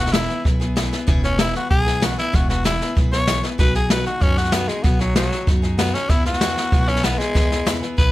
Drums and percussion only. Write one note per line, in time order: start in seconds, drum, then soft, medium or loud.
0.06 snare soft
0.13 snare loud
0.13 hi-hat pedal medium
0.29 snare soft
0.45 kick loud
0.45 snare soft
0.61 snare soft
0.77 snare medium
0.77 hi-hat pedal medium
0.93 snare soft
1.08 kick loud
1.08 snare soft
1.24 snare soft
1.39 snare loud
1.39 hi-hat pedal medium
1.55 snare soft
1.71 kick loud
1.71 snare soft
1.87 snare soft
2.02 snare loud
2.02 hi-hat pedal medium
2.18 snare soft
2.34 kick loud
2.34 snare soft
2.50 snare soft
2.65 snare loud
2.65 hi-hat pedal medium
2.81 snare soft
2.96 kick loud
2.96 snare soft
3.13 snare soft
3.27 snare loud
3.27 hi-hat pedal medium
3.43 snare soft
3.59 kick loud
3.59 snare soft
3.75 snare soft
3.90 snare loud
3.90 hi-hat pedal medium
4.06 snare soft
4.21 kick loud
4.21 snare soft
4.37 snare soft
4.45 snare soft
4.52 snare loud
4.52 hi-hat pedal medium
4.68 snare soft
4.84 kick loud
4.84 snare soft
5.00 snare soft
5.16 snare loud
5.16 hi-hat pedal medium
5.32 snare soft
5.47 kick loud
5.47 snare soft
5.63 snare soft
5.79 snare medium
5.79 hi-hat pedal medium
5.94 snare soft
6.10 kick loud
6.10 snare soft
6.25 snare soft
6.33 snare soft
6.41 snare loud
6.41 hi-hat pedal medium
6.57 snare soft
6.72 kick loud
6.72 snare soft
6.88 snare soft
6.96 snare soft
7.04 snare medium
7.04 hi-hat pedal medium
7.20 snare soft
7.35 kick loud
7.35 snare soft
7.51 snare soft
7.67 snare loud
7.67 hi-hat pedal medium
7.83 snare soft
7.98 kick loud
7.98 snare soft